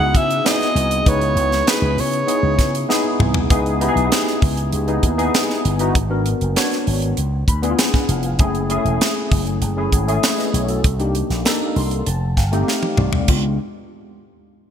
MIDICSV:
0, 0, Header, 1, 5, 480
1, 0, Start_track
1, 0, Key_signature, 4, "minor"
1, 0, Tempo, 610998
1, 836, Time_signature, 4, 2, 24, 8
1, 11554, End_track
2, 0, Start_track
2, 0, Title_t, "Alto saxophone"
2, 0, Program_c, 0, 65
2, 0, Note_on_c, 0, 78, 116
2, 131, Note_on_c, 0, 76, 112
2, 143, Note_off_c, 0, 78, 0
2, 363, Note_off_c, 0, 76, 0
2, 373, Note_on_c, 0, 75, 100
2, 855, Note_on_c, 0, 73, 103
2, 866, Note_off_c, 0, 75, 0
2, 1331, Note_on_c, 0, 71, 86
2, 1342, Note_off_c, 0, 73, 0
2, 1569, Note_on_c, 0, 73, 86
2, 1581, Note_off_c, 0, 71, 0
2, 2282, Note_off_c, 0, 73, 0
2, 11554, End_track
3, 0, Start_track
3, 0, Title_t, "Tine electric piano"
3, 0, Program_c, 1, 4
3, 0, Control_c, 1, 64, 127
3, 0, Note_on_c, 1, 59, 67
3, 0, Note_on_c, 1, 63, 75
3, 0, Note_on_c, 1, 64, 77
3, 0, Note_on_c, 1, 66, 66
3, 0, Note_on_c, 1, 68, 87
3, 224, Note_off_c, 1, 59, 0
3, 225, Note_off_c, 1, 63, 0
3, 226, Note_off_c, 1, 64, 0
3, 253, Note_off_c, 1, 68, 0
3, 350, Note_on_c, 1, 59, 94
3, 354, Note_on_c, 1, 63, 77
3, 359, Note_on_c, 1, 64, 73
3, 360, Note_on_c, 1, 68, 90
3, 703, Note_off_c, 1, 59, 0
3, 705, Note_off_c, 1, 63, 0
3, 707, Note_off_c, 1, 64, 0
3, 708, Note_off_c, 1, 68, 0
3, 831, Note_on_c, 1, 59, 67
3, 833, Note_on_c, 1, 63, 75
3, 836, Note_on_c, 1, 64, 71
3, 837, Note_on_c, 1, 71, 90
3, 1183, Note_off_c, 1, 59, 0
3, 1184, Note_off_c, 1, 63, 0
3, 1185, Note_off_c, 1, 64, 0
3, 1186, Note_off_c, 1, 71, 0
3, 1304, Note_on_c, 1, 59, 63
3, 1309, Note_on_c, 1, 63, 56
3, 1309, Note_on_c, 1, 64, 56
3, 1315, Note_on_c, 1, 68, 75
3, 1659, Note_off_c, 1, 59, 0
3, 1662, Note_off_c, 1, 63, 0
3, 1662, Note_off_c, 1, 64, 0
3, 1665, Note_off_c, 1, 68, 0
3, 1784, Note_on_c, 1, 59, 73
3, 1788, Note_on_c, 1, 63, 67
3, 1789, Note_on_c, 1, 64, 68
3, 1793, Note_on_c, 1, 68, 80
3, 2139, Note_off_c, 1, 59, 0
3, 2141, Note_off_c, 1, 63, 0
3, 2142, Note_off_c, 1, 64, 0
3, 2144, Note_off_c, 1, 68, 0
3, 2268, Note_on_c, 1, 59, 90
3, 2269, Note_on_c, 1, 63, 85
3, 2273, Note_on_c, 1, 64, 84
3, 2276, Note_on_c, 1, 68, 104
3, 2621, Note_off_c, 1, 59, 0
3, 2622, Note_off_c, 1, 63, 0
3, 2624, Note_off_c, 1, 64, 0
3, 2625, Note_off_c, 1, 68, 0
3, 2750, Note_on_c, 1, 59, 87
3, 2752, Note_on_c, 1, 63, 79
3, 2755, Note_on_c, 1, 64, 74
3, 2758, Note_on_c, 1, 68, 95
3, 2764, Control_c, 1, 64, 0
3, 2765, Note_off_c, 1, 66, 0
3, 2913, Control_c, 1, 64, 127
3, 2927, Note_off_c, 1, 59, 0
3, 2928, Note_off_c, 1, 63, 0
3, 2930, Note_off_c, 1, 64, 0
3, 2931, Note_off_c, 1, 68, 0
3, 2990, Note_on_c, 1, 59, 97
3, 2993, Note_on_c, 1, 63, 79
3, 2996, Note_on_c, 1, 64, 88
3, 2999, Note_on_c, 1, 67, 86
3, 3048, Note_off_c, 1, 67, 0
3, 3051, Note_on_c, 1, 68, 104
3, 3605, Note_off_c, 1, 59, 0
3, 3606, Note_off_c, 1, 63, 0
3, 3607, Note_off_c, 1, 64, 0
3, 3635, Note_off_c, 1, 68, 0
3, 3828, Note_on_c, 1, 59, 81
3, 3832, Note_on_c, 1, 63, 80
3, 3834, Note_on_c, 1, 64, 71
3, 3838, Note_on_c, 1, 68, 80
3, 4006, Note_off_c, 1, 59, 0
3, 4009, Note_off_c, 1, 63, 0
3, 4009, Note_off_c, 1, 64, 0
3, 4011, Note_off_c, 1, 68, 0
3, 4065, Note_on_c, 1, 59, 88
3, 4069, Note_on_c, 1, 63, 73
3, 4071, Note_on_c, 1, 64, 76
3, 4072, Note_on_c, 1, 68, 103
3, 4420, Note_off_c, 1, 59, 0
3, 4422, Note_off_c, 1, 63, 0
3, 4423, Note_off_c, 1, 64, 0
3, 4424, Note_off_c, 1, 68, 0
3, 4554, Note_on_c, 1, 59, 87
3, 4558, Note_on_c, 1, 63, 88
3, 4559, Note_on_c, 1, 64, 88
3, 4562, Note_on_c, 1, 66, 101
3, 4674, Note_off_c, 1, 59, 0
3, 4677, Note_off_c, 1, 63, 0
3, 4677, Note_off_c, 1, 64, 0
3, 4679, Note_off_c, 1, 66, 0
3, 4686, Control_c, 1, 64, 0
3, 4789, Note_on_c, 1, 59, 88
3, 4792, Note_on_c, 1, 62, 74
3, 4794, Note_on_c, 1, 66, 73
3, 4797, Note_on_c, 1, 70, 88
3, 4818, Control_c, 1, 64, 127
3, 5055, Note_off_c, 1, 59, 0
3, 5056, Note_off_c, 1, 62, 0
3, 5057, Note_off_c, 1, 66, 0
3, 5059, Note_off_c, 1, 70, 0
3, 5151, Note_on_c, 1, 59, 84
3, 5155, Note_on_c, 1, 62, 81
3, 5157, Note_on_c, 1, 66, 76
3, 5161, Note_on_c, 1, 73, 97
3, 5634, Note_off_c, 1, 59, 0
3, 5636, Note_off_c, 1, 62, 0
3, 5636, Note_off_c, 1, 66, 0
3, 5638, Note_off_c, 1, 73, 0
3, 5647, Control_c, 1, 64, 0
3, 5766, Control_c, 1, 64, 127
3, 5879, Note_on_c, 1, 83, 72
3, 5990, Note_on_c, 1, 59, 104
3, 5993, Note_on_c, 1, 62, 89
3, 5996, Note_on_c, 1, 64, 67
3, 6000, Note_on_c, 1, 68, 102
3, 6047, Note_off_c, 1, 64, 0
3, 6050, Note_on_c, 1, 65, 92
3, 6101, Note_off_c, 1, 83, 0
3, 6116, Note_on_c, 1, 80, 72
3, 6228, Note_off_c, 1, 80, 0
3, 6236, Note_on_c, 1, 78, 67
3, 6347, Note_off_c, 1, 78, 0
3, 6358, Note_on_c, 1, 77, 73
3, 6431, Note_off_c, 1, 59, 0
3, 6432, Note_off_c, 1, 62, 0
3, 6436, Note_off_c, 1, 68, 0
3, 6461, Note_off_c, 1, 65, 0
3, 6581, Note_off_c, 1, 77, 0
3, 6590, Note_on_c, 1, 57, 90
3, 6595, Note_on_c, 1, 61, 80
3, 6596, Note_on_c, 1, 64, 84
3, 6599, Note_on_c, 1, 68, 96
3, 6605, Control_c, 1, 64, 0
3, 6749, Control_c, 1, 64, 127
3, 6768, Note_off_c, 1, 57, 0
3, 6771, Note_off_c, 1, 61, 0
3, 6771, Note_off_c, 1, 64, 0
3, 6773, Note_off_c, 1, 68, 0
3, 6830, Note_on_c, 1, 57, 88
3, 6835, Note_on_c, 1, 61, 87
3, 6838, Note_on_c, 1, 64, 81
3, 6842, Note_on_c, 1, 68, 100
3, 7446, Note_off_c, 1, 57, 0
3, 7449, Note_off_c, 1, 61, 0
3, 7450, Note_off_c, 1, 64, 0
3, 7452, Note_off_c, 1, 68, 0
3, 7674, Note_on_c, 1, 57, 77
3, 7676, Note_on_c, 1, 61, 77
3, 7679, Note_on_c, 1, 64, 79
3, 7683, Note_on_c, 1, 68, 90
3, 7851, Note_off_c, 1, 57, 0
3, 7852, Note_off_c, 1, 61, 0
3, 7853, Note_off_c, 1, 64, 0
3, 7855, Note_off_c, 1, 68, 0
3, 7917, Note_on_c, 1, 57, 88
3, 7919, Note_on_c, 1, 61, 84
3, 7923, Note_on_c, 1, 64, 80
3, 7925, Note_on_c, 1, 68, 92
3, 8037, Note_on_c, 1, 76, 65
3, 8041, Note_off_c, 1, 68, 0
3, 8045, Note_on_c, 1, 73, 53
3, 8151, Note_off_c, 1, 76, 0
3, 8152, Note_on_c, 1, 75, 65
3, 8155, Note_off_c, 1, 73, 0
3, 8159, Note_on_c, 1, 71, 55
3, 8267, Note_off_c, 1, 57, 0
3, 8269, Note_off_c, 1, 61, 0
3, 8269, Note_off_c, 1, 75, 0
3, 8270, Note_off_c, 1, 64, 0
3, 8272, Note_off_c, 1, 71, 0
3, 8276, Note_on_c, 1, 73, 72
3, 8280, Note_on_c, 1, 69, 64
3, 8390, Note_off_c, 1, 69, 0
3, 8391, Note_off_c, 1, 73, 0
3, 8400, Note_on_c, 1, 69, 71
3, 8402, Note_on_c, 1, 66, 57
3, 8528, Control_c, 1, 64, 0
3, 8627, Note_off_c, 1, 69, 0
3, 8628, Note_off_c, 1, 66, 0
3, 8630, Note_on_c, 1, 58, 81
3, 8636, Note_on_c, 1, 62, 78
3, 8639, Note_on_c, 1, 63, 68
3, 8642, Note_on_c, 1, 67, 90
3, 8650, Control_c, 1, 64, 127
3, 8897, Note_off_c, 1, 58, 0
3, 8900, Note_off_c, 1, 62, 0
3, 8901, Note_off_c, 1, 63, 0
3, 8903, Note_off_c, 1, 67, 0
3, 8995, Note_on_c, 1, 58, 91
3, 8999, Note_on_c, 1, 62, 76
3, 9001, Note_on_c, 1, 63, 83
3, 9004, Note_on_c, 1, 69, 96
3, 9241, Note_on_c, 1, 84, 67
3, 9463, Note_off_c, 1, 84, 0
3, 9477, Note_off_c, 1, 58, 0
3, 9478, Note_on_c, 1, 81, 67
3, 9479, Note_off_c, 1, 62, 0
3, 9480, Note_off_c, 1, 63, 0
3, 9481, Note_off_c, 1, 69, 0
3, 9489, Control_c, 1, 64, 0
3, 9635, Control_c, 1, 64, 127
3, 9702, Note_off_c, 1, 81, 0
3, 9718, Note_on_c, 1, 77, 70
3, 9836, Note_on_c, 1, 57, 95
3, 9839, Note_on_c, 1, 60, 85
3, 9841, Note_on_c, 1, 63, 91
3, 9845, Note_on_c, 1, 67, 100
3, 9942, Note_off_c, 1, 77, 0
3, 9958, Note_on_c, 1, 77, 73
3, 10182, Note_off_c, 1, 77, 0
3, 10195, Note_on_c, 1, 74, 67
3, 10275, Note_off_c, 1, 57, 0
3, 10277, Note_off_c, 1, 60, 0
3, 10278, Note_off_c, 1, 63, 0
3, 10280, Note_off_c, 1, 67, 0
3, 10421, Note_off_c, 1, 74, 0
3, 10434, Note_on_c, 1, 65, 87
3, 10436, Note_on_c, 1, 62, 66
3, 10437, Note_on_c, 1, 56, 76
3, 10438, Note_on_c, 1, 59, 65
3, 10450, Control_c, 1, 64, 0
3, 10660, Note_off_c, 1, 65, 0
3, 10661, Note_off_c, 1, 62, 0
3, 10662, Note_off_c, 1, 56, 0
3, 10662, Note_off_c, 1, 59, 0
3, 11554, End_track
4, 0, Start_track
4, 0, Title_t, "Slap bass"
4, 0, Program_c, 2, 36
4, 0, Note_on_c, 2, 37, 102
4, 92, Note_off_c, 2, 37, 0
4, 113, Note_on_c, 2, 49, 108
4, 311, Note_off_c, 2, 49, 0
4, 591, Note_on_c, 2, 36, 88
4, 790, Note_off_c, 2, 36, 0
4, 834, Note_on_c, 2, 37, 110
4, 1031, Note_off_c, 2, 37, 0
4, 1066, Note_on_c, 2, 37, 84
4, 1266, Note_off_c, 2, 37, 0
4, 1428, Note_on_c, 2, 37, 96
4, 1552, Note_on_c, 2, 49, 96
4, 1563, Note_off_c, 2, 37, 0
4, 1750, Note_off_c, 2, 49, 0
4, 1908, Note_on_c, 2, 37, 90
4, 2009, Note_off_c, 2, 37, 0
4, 2031, Note_on_c, 2, 49, 98
4, 2229, Note_off_c, 2, 49, 0
4, 2509, Note_on_c, 2, 36, 91
4, 2708, Note_off_c, 2, 36, 0
4, 2753, Note_on_c, 2, 37, 92
4, 3049, Note_off_c, 2, 37, 0
4, 3108, Note_on_c, 2, 35, 91
4, 3209, Note_off_c, 2, 35, 0
4, 3473, Note_on_c, 2, 37, 95
4, 3670, Note_off_c, 2, 37, 0
4, 3715, Note_on_c, 2, 37, 97
4, 3911, Note_off_c, 2, 37, 0
4, 3952, Note_on_c, 2, 39, 98
4, 4150, Note_off_c, 2, 39, 0
4, 4440, Note_on_c, 2, 31, 93
4, 4634, Note_off_c, 2, 31, 0
4, 4676, Note_on_c, 2, 32, 88
4, 4971, Note_off_c, 2, 32, 0
4, 5040, Note_on_c, 2, 30, 88
4, 5136, Note_off_c, 2, 30, 0
4, 5399, Note_on_c, 2, 32, 91
4, 5594, Note_off_c, 2, 32, 0
4, 5639, Note_on_c, 2, 37, 97
4, 5834, Note_off_c, 2, 37, 0
4, 5873, Note_on_c, 2, 38, 90
4, 6071, Note_off_c, 2, 38, 0
4, 6352, Note_on_c, 2, 29, 91
4, 6551, Note_off_c, 2, 29, 0
4, 6593, Note_on_c, 2, 30, 86
4, 6889, Note_off_c, 2, 30, 0
4, 6952, Note_on_c, 2, 28, 85
4, 7052, Note_off_c, 2, 28, 0
4, 7320, Note_on_c, 2, 30, 83
4, 7515, Note_off_c, 2, 30, 0
4, 7552, Note_on_c, 2, 30, 90
4, 7751, Note_off_c, 2, 30, 0
4, 7797, Note_on_c, 2, 32, 92
4, 7994, Note_off_c, 2, 32, 0
4, 8277, Note_on_c, 2, 35, 90
4, 8474, Note_off_c, 2, 35, 0
4, 8517, Note_on_c, 2, 36, 102
4, 8813, Note_off_c, 2, 36, 0
4, 8877, Note_on_c, 2, 34, 81
4, 8976, Note_off_c, 2, 34, 0
4, 9240, Note_on_c, 2, 36, 84
4, 9436, Note_off_c, 2, 36, 0
4, 9481, Note_on_c, 2, 29, 102
4, 9719, Note_off_c, 2, 29, 0
4, 9719, Note_on_c, 2, 31, 82
4, 9916, Note_off_c, 2, 31, 0
4, 10197, Note_on_c, 2, 36, 90
4, 10395, Note_off_c, 2, 36, 0
4, 10437, Note_on_c, 2, 37, 80
4, 10662, Note_off_c, 2, 37, 0
4, 11554, End_track
5, 0, Start_track
5, 0, Title_t, "Drums"
5, 115, Note_on_c, 9, 36, 85
5, 117, Note_on_c, 9, 42, 76
5, 193, Note_off_c, 9, 36, 0
5, 196, Note_off_c, 9, 42, 0
5, 240, Note_on_c, 9, 42, 52
5, 318, Note_off_c, 9, 42, 0
5, 360, Note_on_c, 9, 42, 90
5, 363, Note_on_c, 9, 38, 116
5, 439, Note_off_c, 9, 42, 0
5, 441, Note_off_c, 9, 38, 0
5, 477, Note_on_c, 9, 42, 36
5, 484, Note_on_c, 9, 38, 38
5, 556, Note_off_c, 9, 42, 0
5, 562, Note_off_c, 9, 38, 0
5, 599, Note_on_c, 9, 42, 81
5, 678, Note_off_c, 9, 42, 0
5, 715, Note_on_c, 9, 42, 56
5, 794, Note_off_c, 9, 42, 0
5, 836, Note_on_c, 9, 36, 127
5, 836, Note_on_c, 9, 42, 80
5, 914, Note_off_c, 9, 36, 0
5, 915, Note_off_c, 9, 42, 0
5, 954, Note_on_c, 9, 42, 42
5, 1032, Note_off_c, 9, 42, 0
5, 1075, Note_on_c, 9, 42, 67
5, 1154, Note_off_c, 9, 42, 0
5, 1196, Note_on_c, 9, 42, 42
5, 1197, Note_on_c, 9, 38, 40
5, 1275, Note_off_c, 9, 42, 0
5, 1276, Note_off_c, 9, 38, 0
5, 1315, Note_on_c, 9, 42, 87
5, 1318, Note_on_c, 9, 38, 113
5, 1394, Note_off_c, 9, 42, 0
5, 1397, Note_off_c, 9, 38, 0
5, 1556, Note_on_c, 9, 46, 63
5, 1635, Note_off_c, 9, 46, 0
5, 1677, Note_on_c, 9, 42, 50
5, 1755, Note_off_c, 9, 42, 0
5, 1794, Note_on_c, 9, 42, 77
5, 1873, Note_off_c, 9, 42, 0
5, 2032, Note_on_c, 9, 36, 74
5, 2033, Note_on_c, 9, 42, 73
5, 2037, Note_on_c, 9, 38, 34
5, 2110, Note_off_c, 9, 36, 0
5, 2111, Note_off_c, 9, 42, 0
5, 2115, Note_off_c, 9, 38, 0
5, 2159, Note_on_c, 9, 42, 53
5, 2238, Note_off_c, 9, 42, 0
5, 2279, Note_on_c, 9, 38, 65
5, 2358, Note_off_c, 9, 38, 0
5, 2515, Note_on_c, 9, 45, 100
5, 2593, Note_off_c, 9, 45, 0
5, 2627, Note_on_c, 9, 43, 96
5, 2706, Note_off_c, 9, 43, 0
5, 2752, Note_on_c, 9, 42, 86
5, 2753, Note_on_c, 9, 36, 119
5, 2831, Note_off_c, 9, 42, 0
5, 2832, Note_off_c, 9, 36, 0
5, 2876, Note_on_c, 9, 42, 36
5, 2955, Note_off_c, 9, 42, 0
5, 2996, Note_on_c, 9, 42, 68
5, 3074, Note_off_c, 9, 42, 0
5, 3118, Note_on_c, 9, 42, 41
5, 3196, Note_off_c, 9, 42, 0
5, 3235, Note_on_c, 9, 42, 93
5, 3238, Note_on_c, 9, 38, 110
5, 3313, Note_off_c, 9, 42, 0
5, 3317, Note_off_c, 9, 38, 0
5, 3357, Note_on_c, 9, 38, 36
5, 3436, Note_off_c, 9, 38, 0
5, 3473, Note_on_c, 9, 46, 71
5, 3474, Note_on_c, 9, 36, 110
5, 3552, Note_off_c, 9, 46, 0
5, 3553, Note_off_c, 9, 36, 0
5, 3593, Note_on_c, 9, 42, 48
5, 3672, Note_off_c, 9, 42, 0
5, 3712, Note_on_c, 9, 42, 69
5, 3791, Note_off_c, 9, 42, 0
5, 3832, Note_on_c, 9, 42, 34
5, 3911, Note_off_c, 9, 42, 0
5, 3951, Note_on_c, 9, 42, 81
5, 3952, Note_on_c, 9, 36, 72
5, 4030, Note_off_c, 9, 42, 0
5, 4031, Note_off_c, 9, 36, 0
5, 4077, Note_on_c, 9, 42, 54
5, 4156, Note_off_c, 9, 42, 0
5, 4199, Note_on_c, 9, 42, 89
5, 4201, Note_on_c, 9, 38, 116
5, 4277, Note_off_c, 9, 42, 0
5, 4280, Note_off_c, 9, 38, 0
5, 4321, Note_on_c, 9, 38, 37
5, 4399, Note_off_c, 9, 38, 0
5, 4440, Note_on_c, 9, 42, 75
5, 4518, Note_off_c, 9, 42, 0
5, 4551, Note_on_c, 9, 42, 55
5, 4630, Note_off_c, 9, 42, 0
5, 4675, Note_on_c, 9, 42, 79
5, 4676, Note_on_c, 9, 36, 117
5, 4754, Note_off_c, 9, 42, 0
5, 4755, Note_off_c, 9, 36, 0
5, 4916, Note_on_c, 9, 42, 73
5, 4994, Note_off_c, 9, 42, 0
5, 5037, Note_on_c, 9, 42, 48
5, 5116, Note_off_c, 9, 42, 0
5, 5157, Note_on_c, 9, 42, 89
5, 5160, Note_on_c, 9, 38, 93
5, 5235, Note_off_c, 9, 42, 0
5, 5238, Note_off_c, 9, 38, 0
5, 5274, Note_on_c, 9, 42, 35
5, 5282, Note_on_c, 9, 38, 35
5, 5353, Note_off_c, 9, 42, 0
5, 5361, Note_off_c, 9, 38, 0
5, 5397, Note_on_c, 9, 46, 72
5, 5476, Note_off_c, 9, 46, 0
5, 5516, Note_on_c, 9, 42, 47
5, 5595, Note_off_c, 9, 42, 0
5, 5634, Note_on_c, 9, 42, 81
5, 5713, Note_off_c, 9, 42, 0
5, 5874, Note_on_c, 9, 36, 79
5, 5877, Note_on_c, 9, 42, 66
5, 5953, Note_off_c, 9, 36, 0
5, 5956, Note_off_c, 9, 42, 0
5, 5995, Note_on_c, 9, 42, 50
5, 6074, Note_off_c, 9, 42, 0
5, 6116, Note_on_c, 9, 42, 89
5, 6119, Note_on_c, 9, 38, 108
5, 6195, Note_off_c, 9, 42, 0
5, 6198, Note_off_c, 9, 38, 0
5, 6237, Note_on_c, 9, 36, 91
5, 6239, Note_on_c, 9, 38, 38
5, 6315, Note_off_c, 9, 36, 0
5, 6317, Note_off_c, 9, 38, 0
5, 6354, Note_on_c, 9, 42, 82
5, 6433, Note_off_c, 9, 42, 0
5, 6465, Note_on_c, 9, 42, 54
5, 6543, Note_off_c, 9, 42, 0
5, 6590, Note_on_c, 9, 42, 76
5, 6594, Note_on_c, 9, 36, 115
5, 6668, Note_off_c, 9, 42, 0
5, 6673, Note_off_c, 9, 36, 0
5, 6715, Note_on_c, 9, 42, 39
5, 6793, Note_off_c, 9, 42, 0
5, 6833, Note_on_c, 9, 42, 74
5, 6912, Note_off_c, 9, 42, 0
5, 6958, Note_on_c, 9, 42, 44
5, 7036, Note_off_c, 9, 42, 0
5, 7080, Note_on_c, 9, 42, 93
5, 7083, Note_on_c, 9, 38, 113
5, 7158, Note_off_c, 9, 42, 0
5, 7162, Note_off_c, 9, 38, 0
5, 7318, Note_on_c, 9, 36, 110
5, 7318, Note_on_c, 9, 46, 65
5, 7397, Note_off_c, 9, 36, 0
5, 7397, Note_off_c, 9, 46, 0
5, 7439, Note_on_c, 9, 42, 47
5, 7518, Note_off_c, 9, 42, 0
5, 7555, Note_on_c, 9, 42, 75
5, 7634, Note_off_c, 9, 42, 0
5, 7796, Note_on_c, 9, 36, 80
5, 7798, Note_on_c, 9, 42, 67
5, 7875, Note_off_c, 9, 36, 0
5, 7877, Note_off_c, 9, 42, 0
5, 7922, Note_on_c, 9, 42, 50
5, 8001, Note_off_c, 9, 42, 0
5, 8039, Note_on_c, 9, 42, 88
5, 8042, Note_on_c, 9, 38, 116
5, 8117, Note_off_c, 9, 42, 0
5, 8120, Note_off_c, 9, 38, 0
5, 8157, Note_on_c, 9, 42, 33
5, 8163, Note_on_c, 9, 38, 36
5, 8235, Note_off_c, 9, 42, 0
5, 8242, Note_off_c, 9, 38, 0
5, 8283, Note_on_c, 9, 42, 80
5, 8362, Note_off_c, 9, 42, 0
5, 8394, Note_on_c, 9, 42, 52
5, 8472, Note_off_c, 9, 42, 0
5, 8517, Note_on_c, 9, 42, 82
5, 8519, Note_on_c, 9, 36, 112
5, 8596, Note_off_c, 9, 42, 0
5, 8597, Note_off_c, 9, 36, 0
5, 8638, Note_on_c, 9, 42, 40
5, 8717, Note_off_c, 9, 42, 0
5, 8758, Note_on_c, 9, 42, 66
5, 8837, Note_off_c, 9, 42, 0
5, 8881, Note_on_c, 9, 42, 45
5, 8882, Note_on_c, 9, 38, 32
5, 8959, Note_off_c, 9, 42, 0
5, 8960, Note_off_c, 9, 38, 0
5, 8999, Note_on_c, 9, 42, 87
5, 9002, Note_on_c, 9, 38, 102
5, 9077, Note_off_c, 9, 42, 0
5, 9081, Note_off_c, 9, 38, 0
5, 9240, Note_on_c, 9, 46, 66
5, 9319, Note_off_c, 9, 46, 0
5, 9359, Note_on_c, 9, 42, 50
5, 9437, Note_off_c, 9, 42, 0
5, 9478, Note_on_c, 9, 42, 76
5, 9556, Note_off_c, 9, 42, 0
5, 9719, Note_on_c, 9, 36, 80
5, 9722, Note_on_c, 9, 42, 72
5, 9726, Note_on_c, 9, 38, 31
5, 9798, Note_off_c, 9, 36, 0
5, 9801, Note_off_c, 9, 42, 0
5, 9805, Note_off_c, 9, 38, 0
5, 9842, Note_on_c, 9, 42, 44
5, 9921, Note_off_c, 9, 42, 0
5, 9964, Note_on_c, 9, 38, 54
5, 10042, Note_off_c, 9, 38, 0
5, 10076, Note_on_c, 9, 48, 61
5, 10155, Note_off_c, 9, 48, 0
5, 10193, Note_on_c, 9, 45, 95
5, 10271, Note_off_c, 9, 45, 0
5, 10312, Note_on_c, 9, 43, 88
5, 10390, Note_off_c, 9, 43, 0
5, 10432, Note_on_c, 9, 49, 82
5, 10436, Note_on_c, 9, 36, 103
5, 10510, Note_off_c, 9, 49, 0
5, 10515, Note_off_c, 9, 36, 0
5, 11554, End_track
0, 0, End_of_file